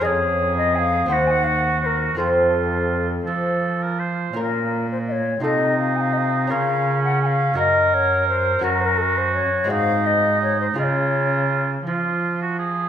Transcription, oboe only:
X:1
M:6/8
L:1/16
Q:3/8=56
K:Bbm
V:1 name="Oboe"
A6 G6 | F6 =A3 B c2 | z6 E6 | D6 B6 |
[K:Db] G6 E6 | F6 F3 G A2 |]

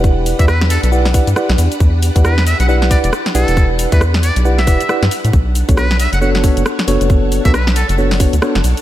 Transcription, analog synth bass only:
X:1
M:4/4
L:1/16
Q:"Swing 16ths" 1/4=136
K:Edor
V:1 name="Analog synth bass" clef=bass
E,,,3 E,,4 B,,,4 G,, z B,,, E,, z | E,,3 E,,4 B,,,4 E,,, z2 B,,, E,,,- | E,,,3 E,,4 B,,,3 E,,, z2 G,, z A,, | B,,,3 B,,,4 F,,,4 F,,, z2 F,,, F,,,- |
F,,,3 B,,,4 F,,,4 D,, z F,,, B,,, z |]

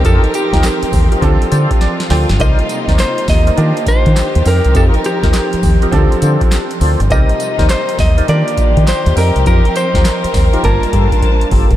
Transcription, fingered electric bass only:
X:1
M:4/4
L:1/16
Q:"Swing 16ths" 1/4=102
K:Fmix
V:1 name="Fingered electric bass" clef=bass
F,, z2 E,, z2 E,, z D,, z D, z3 D,, G,,, | C,, z2 E,, z2 E,,2 E, z2 E, z E,, F,, C,, | F,, z2 E,, z2 E,, z D,, z D, z3 D,, G,,, | C,, z2 E,, z2 E,,2 E, z2 E, z E,, F,, C,, |
F,, z2 E,, z2 E,, z G,,, z G,, z3 G,,, G,,, |]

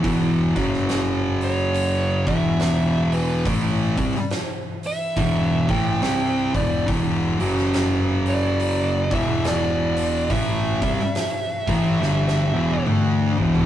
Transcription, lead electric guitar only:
X:1
M:4/4
L:1/8
Q:"Swing" 1/4=70
K:Em
V:1 name="Lead electric guitar"
z3 ^c2 e2 B | z3 e2 g2 d | z3 d2 e d2 | e6 z2 |]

